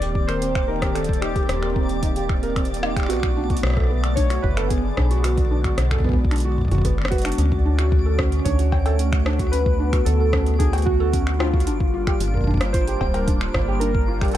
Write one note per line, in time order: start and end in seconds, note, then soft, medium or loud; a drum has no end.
0.00 1.44 D#1 medium
0.00 3.06 D#3 medium
0.00 3.06 A#3 medium
0.00 3.06 C4 medium
0.00 3.06 G4 medium
0.00 0.15 G4 medium
0.00 0.29 D5 loud
0.00 7.39 D5 medium
0.00 closed hi-hat medium
0.15 kick loud
0.27 0.37 A#4 loud
0.27 0.69 C5 loud
0.27 finger snap soft
0.27 closed hi-hat soft
0.42 0.51 C4 medium
0.42 closed hi-hat medium
0.55 finger snap medium
0.55 kick loud
0.67 0.77 D#4 medium
0.67 0.93 A#4 medium
0.82 0.95 G4 medium
0.82 kick loud
0.82 cross-stick loud
0.82 closed hi-hat soft
0.94 1.01 C4 medium
0.94 1.20 A4 medium
0.94 finger snap medium
0.94 closed hi-hat medium
1.04 closed hi-hat medium
1.09 kick loud
1.13 closed hi-hat soft
1.21 1.28 D#4 medium
1.21 2.25 G4 medium
1.21 finger snap medium
1.36 1.41 G4 medium
1.36 kick loud
1.36 closed hi-hat soft
1.49 3.11 D#1 medium
1.49 cross-stick loud
1.49 closed hi-hat medium
1.63 1.75 A#4 medium
1.63 finger snap medium
1.76 1.85 C4 medium
1.76 kick loud
1.89 closed hi-hat soft
2.03 2.08 D#4 medium
2.03 kick loud
2.03 closed hi-hat medium
2.16 2.29 G4 medium
2.16 closed hi-hat soft
2.29 finger snap soft
2.29 kick loud
2.43 2.51 A#4 loud
2.43 closed hi-hat soft
2.56 2.65 C4 medium
2.56 finger snap medium
2.56 kick loud
2.56 closed hi-hat soft
2.65 closed hi-hat soft
2.74 closed hi-hat medium
2.83 2.92 D#4 medium
2.83 cross-stick loud
2.96 3.09 G4 medium
2.96 finger snap soft
2.96 kick loud
2.96 closed hi-hat soft
3.00 finger snap soft
3.03 finger snap soft
3.06 7.34 D3 medium
3.06 5.22 A3 medium
3.06 7.34 B3 medium
3.06 3.15 B3 medium
3.06 4.20 F#4 medium
3.06 finger snap soft
3.10 3.58 B1 medium
3.10 finger snap soft
3.10 closed hi-hat medium
3.13 finger snap soft
3.16 finger snap soft
3.20 finger snap soft
3.23 finger snap medium
3.23 kick loud
3.37 3.42 D4 medium
3.50 3.55 F#4 medium
3.50 kick loud
3.50 closed hi-hat soft
3.57 closed hi-hat medium
3.63 4.38 B1 medium
3.63 finger snap medium
3.63 cross-stick loud
3.67 cross-stick medium
3.70 cross-stick medium
3.73 cross-stick medium
3.77 3.90 A4 medium
3.77 kick loud
3.77 cross-stick soft
3.80 cross-stick soft
3.84 cross-stick soft
3.87 3.99 B3 medium
3.87 cross-stick soft
4.04 finger snap medium
4.04 closed hi-hat soft
4.15 4.22 D4 medium
4.15 4.44 C#5 loud
4.15 kick loud
4.15 closed hi-hat medium
4.30 4.43 F#4 medium
4.30 finger snap medium
4.30 closed hi-hat medium
4.42 4.92 F#1 medium
4.42 4.71 B4 loud
4.42 kick loud
4.57 4.66 A4 loud
4.57 finger snap medium
4.57 closed hi-hat soft
4.69 4.79 B3 medium
4.69 5.25 G#4 loud
4.69 kick loud
4.69 closed hi-hat medium
4.97 5.72 B1 medium
4.97 5.06 D4 medium
4.97 kick loud
4.97 cross-stick loud
5.11 5.23 F#4 medium
5.11 closed hi-hat soft
5.23 7.36 G#3 medium
5.23 5.29 B3 medium
5.23 6.80 F#4 medium
5.23 finger snap medium
5.23 closed hi-hat medium
5.38 kick loud
5.38 closed hi-hat soft
5.51 5.56 D4 medium
5.64 5.69 F#4 medium
5.64 finger snap medium
5.64 kick loud
5.64 closed hi-hat soft
5.78 6.66 B1 medium
5.78 cross-stick loud
5.78 closed hi-hat medium
5.91 6.04 A4 medium
5.91 finger snap medium
5.91 kick medium
5.96 kick medium
6.00 kick medium
6.04 6.13 B3 medium
6.04 kick medium
6.09 kick medium
6.13 kick medium
6.25 kick loud
6.31 6.36 D4 medium
6.31 finger snap medium
6.31 closed hi-hat soft
6.36 closed hi-hat soft
6.38 closed hi-hat medium
6.40 closed hi-hat medium
6.45 6.57 F#4 medium
6.58 kick medium
6.61 kick medium
6.65 kick medium
6.68 kick medium
6.71 7.33 F#1 loud
6.71 6.84 F#4 medium
6.71 kick medium
6.71 closed hi-hat soft
6.75 kick medium
6.78 kick medium
6.81 kick loud
6.81 closed hi-hat medium
6.85 6.93 B3 loud
6.85 kick loud
6.98 finger snap soft
7.02 finger snap soft
7.05 finger snap soft
7.05 cross-stick loud
7.08 8.41 F#4 medium
7.08 7.20 B4 medium
7.08 finger snap soft
7.08 kick loud
7.08 closed hi-hat medium
7.18 closed hi-hat medium
7.22 finger snap medium
7.22 closed hi-hat soft
7.25 7.38 D4 medium
7.25 closed hi-hat medium
7.28 closed hi-hat soft
7.32 closed hi-hat medium
7.35 9.51 C#4 medium
7.35 closed hi-hat soft
7.38 8.40 D2 loud
7.38 11.63 D3 medium
7.38 11.63 A3 medium
7.38 7.44 C#4 medium
7.38 11.63 F#4 medium
7.38 14.37 D7 medium
7.38 closed hi-hat medium
7.42 closed hi-hat soft
7.52 kick loud
7.65 7.70 D4 medium
7.79 7.84 F#4 medium
7.79 finger snap medium
7.79 closed hi-hat soft
7.92 kick loud
8.06 8.18 A4 medium
8.19 8.27 C#4 medium
8.19 kick loud
8.19 cross-stick loud
8.32 closed hi-hat soft
8.44 10.01 D2 medium
8.44 8.51 D4 medium
8.44 9.48 C#5 loud
8.44 kick loud
8.44 closed hi-hat medium
8.59 8.72 F#4 medium
8.59 closed hi-hat medium
8.72 kick loud
8.72 cowbell medium
8.86 8.94 A4 loud
8.86 closed hi-hat soft
8.86 cowbell medium
8.99 9.08 C#4 medium
8.99 closed hi-hat medium
9.13 finger snap medium
9.13 kick loud
9.26 9.35 D4 medium
9.26 cross-stick loud
9.39 9.52 F#4 medium
9.39 kick loud
9.39 closed hi-hat medium
9.51 11.65 B3 medium
9.51 9.58 C#4 medium
9.51 10.07 B4 loud
9.51 closed hi-hat medium
9.66 kick loud
9.79 9.85 D4 medium
9.93 9.98 F#4 medium
9.93 finger snap medium
9.93 kick loud
9.93 closed hi-hat soft
10.05 11.69 D2 medium
10.05 10.61 A4 medium
10.05 closed hi-hat medium
10.20 10.32 A4 medium
10.33 10.42 C#4 medium
10.33 kick loud
10.33 cross-stick loud
10.46 closed hi-hat soft
10.59 10.65 D4 medium
10.59 10.87 G#4 medium
10.59 kick loud
10.59 closed hi-hat medium
10.73 10.86 F#4 medium
10.73 closed hi-hat medium
10.73 cowbell medium
10.78 closed hi-hat soft
10.82 11.41 F#4 loud
10.82 closed hi-hat soft
10.87 kick loud
11.00 11.09 A4 loud
11.13 11.22 C#4 medium
11.13 kick loud
11.13 closed hi-hat medium
11.27 finger snap medium
11.39 11.49 D4 medium
11.39 12.78 F4 medium
11.39 cross-stick loud
11.39 cowbell medium
11.54 11.66 F#4 medium
11.54 kick loud
11.60 closed hi-hat medium
11.67 12.15 G1 medium
11.67 14.37 G3 medium
11.67 14.37 A#3 medium
11.67 11.72 D4 medium
11.67 14.37 D4 medium
11.67 14.37 F4 medium
11.67 closed hi-hat medium
11.80 kick loud
11.94 11.99 F4 medium
12.07 12.12 G4 medium
12.07 finger snap medium
12.07 kick loud
12.20 12.96 G1 medium
12.20 closed hi-hat medium
12.34 12.47 A#4 medium
12.34 kick soft
12.37 kick medium
12.41 kick medium
12.44 kick medium
12.47 12.56 D4 medium
12.47 kick medium
12.51 kick medium
12.54 kick medium
12.57 kick loud
12.57 cross-stick loud
12.57 closed hi-hat soft
12.73 12.79 F4 medium
12.73 13.84 C5 loud
12.73 kick loud
12.73 closed hi-hat medium
12.87 13.00 G4 medium
12.87 closed hi-hat medium
13.01 13.49 D1 loud
13.01 kick loud
13.01 cowbell medium
13.14 13.23 A#4 loud
13.14 closed hi-hat soft
13.14 cowbell medium
13.28 13.36 D4 medium
13.28 kick loud
13.28 closed hi-hat medium
13.41 finger snap medium
13.54 14.29 G1 medium
13.54 13.63 F4 medium
13.54 kick loud
13.54 cross-stick loud
13.68 13.81 G4 medium
13.80 13.86 D4 medium
13.80 14.36 A#4 loud
13.80 closed hi-hat medium
13.95 kick loud
14.08 14.13 F4 medium
14.21 14.27 G4 medium
14.21 finger snap medium
14.21 kick loud
14.21 closed hi-hat soft
14.25 closed hi-hat soft
14.28 closed hi-hat soft
14.31 14.37 A4 loud
14.31 closed hi-hat soft